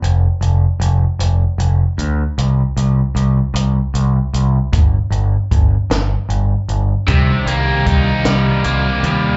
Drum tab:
HH |xxxxxx|xxxxxx|xxxxxx|xxxxxx|
SD |------|------|---o--|---o--|
BD |------|------|o-o---|o-o---|